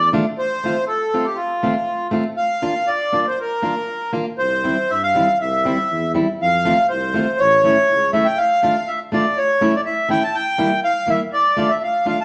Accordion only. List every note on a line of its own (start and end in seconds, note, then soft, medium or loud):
0.38 0.85 C5 medium
0.87 1.26 A4 medium
1.25 1.38 G4 medium
1.36 2.08 F4 medium
2.37 2.89 F5 medium
2.87 3.26 D5 medium
3.27 3.39 C5 medium
3.40 4.12 A#4 medium
4.38 4.91 C5 medium
4.90 5.02 E5 medium
5.03 5.38 F5 medium
5.41 6.12 E5 medium
6.42 6.87 F5 loud
6.89 7.41 C5 medium
7.39 8.11 C#5 loud
8.13 8.27 E5 medium
8.25 8.39 G5 medium
8.37 8.89 F5 medium
8.88 8.99 E5 medium
9.14 9.39 D5 medium
9.37 9.76 C#5 medium
9.76 9.81 D5 medium
9.86 10.09 E5 medium
10.10 10.23 G5 medium
10.24 10.36 A5 medium
10.35 10.80 G5 medium
10.84 11.10 F5 medium
11.10 11.20 E5 medium
11.33 11.71 D5 medium
11.70 11.82 E5 medium
11.83 12.07 F5 medium
12.08 12.20 F5 medium
12.20 12.25 A5 medium